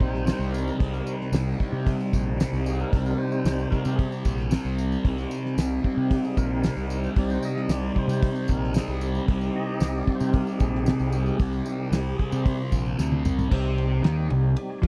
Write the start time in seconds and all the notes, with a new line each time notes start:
Already playing: C3 G3 C4 D#4 C5
0.00 A#1, kick
0.15 snare
0.26 C3 G3 C4, snare, open hi-hat, tambourine
0.39 C2, tambourine
0.52 A#4, tambourine
0.67 tambourine
0.78 C2 C3 G3 C4 G#4, kick, open hi-hat
0.93 A#4, tambourine
1.04 G3 C4 D#4, tambourine
1.21 snare
1.32 C2, snare, open hi-hat, tambourine
1.58 C3 G3 C4, kick
1.72 C3
1.87 kick, open hi-hat, tambourine
2.01 tambourine
2.13 A#1, kick, tambourine
2.37 C3 G3 C4, snare, open hi-hat, tambourine
2.53 C2, tambourine
2.66 G#4, tambourine
2.80 A#4, tambourine
2.92 C2 C3 G3 C4, kick, open hi-hat, tambourine
3.06 tambourine
3.16 G3 C4 D#4 C5
3.32 tambourine
3.45 C2, snare, open hi-hat, tambourine
3.59 tambourine
3.70 C3 G3 C4 A#4, kick, tambourine
3.85 C3, tambourine
3.95 G#4, kick, open hi-hat, tambourine
4.11 G4, tambourine
4.25 A#1, kick, tambourine
4.38 snare, tambourine
4.50 C3 G3 C4, snare, open hi-hat, tambourine
4.65 C2, tambourine
4.78 tambourine
4.92 tambourine
5.03 C2 C3 G3 C4 D#4, kick, open hi-hat
5.07 C4
5.18 tambourine
5.31 tambourine
5.46 snare
5.57 C2, snare, open hi-hat, tambourine
5.83 C3 G3 C4, kick
5.97 C3
6.11 G4, kick, open hi-hat, tambourine
6.25 G#4, tambourine
6.37 A#1 A#4, kick, tambourine
6.62 C3 G3 C4, snare, open hi-hat, tambourine
6.76 C2, tambourine
6.90 tambourine
7.04 C5, tambourine
7.15 C2 C3 G3 C4 D#4 D5, kick, open hi-hat
7.30 C5, tambourine
7.43 D#5, tambourine
7.57 snare
7.69 C2 D5, snare, open hi-hat, tambourine
7.95 C3 G3 C4 C5, kick
8.08 C3, tambourine
8.22 kick, open hi-hat, tambourine
8.36 tambourine
8.48 A#1 A#4, kick, tambourine
8.64 snare
8.74 C3 G3 C4 G#4, snare, open hi-hat, tambourine
8.88 C2, tambourine
9.01 G4, tambourine
9.15 tambourine
9.27 C2 C3 G3 C4 G4, kick, open hi-hat
9.31 D#4
9.41 tambourine
9.56 D#5
9.80 C2, snare, open hi-hat, tambourine
9.98 D5
10.06 C3 G3 C4, kick
10.15 C5
10.20 C3, tambourine
10.32 A#4, kick, open hi-hat, tambourine
10.47 tambourine
10.58 A#1 G#4, kick, tambourine
10.75 snare
10.86 C3 G3 C4, snare, open hi-hat, tambourine
10.99 C2, tambourine
11.12 tambourine
11.26 tambourine
11.37 C2 C3 G3 G4, kick, open hi-hat, tambourine
11.42 C4
11.53 tambourine
11.65 G3 C4 D#4, tambourine
11.92 C2, snare, open hi-hat, tambourine
12.15 C4 G#4
12.19 C3 G3, kick
12.32 C3, tambourine
12.44 G4, kick, open hi-hat, tambourine
12.61 F4
12.72 A#1, kick, tambourine
12.98 D2 C3 G3 C4, snare, tambourine
13.12 high tom
13.25 C2, mid tom, tambourine
13.39 floor tom, tambourine
13.51 C2 C3 G3 C4 D#4 G4, kick, crash
13.78 ride
14.03 D#2 D#3 D#4, snare, ride
14.30 C2 C3, ride
14.57 ride
14.82 F2 F3 F4, kick, ride